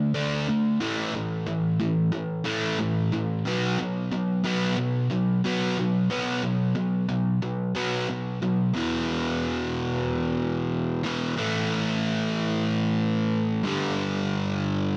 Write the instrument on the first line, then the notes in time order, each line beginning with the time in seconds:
distorted electric guitar
Already playing: D3 A3
0.14 D3 A3 D4
0.48 D3 A3
0.80 A2 E3 A3
1.15 A2 E3
1.46 A2 E3
1.80 A2 E3
2.12 A2 E3
2.44 A2 E3 A3
2.79 A2 E3
3.12 A2 E3
3.45 B2 F#3 B3
3.79 B2 F#3
4.11 B2 F#3
4.44 B2 F#3 B3
4.77 B2 F#3
5.11 B2 F#3
5.44 B2 F#3 B3
5.78 B2 F#3
6.10 B2 F#3 B3
6.44 B2 F#3
6.75 B2 F#3
7.09 B2 F#3
7.42 B2 F#3
7.75 B2 F#3 B3
8.09 B2 F#3
8.42 B2 F#3
8.74 E2 B2 E3
11.04 E2 B2 E3
11.37 A2 E3 A3
13.64 G2 D3 G3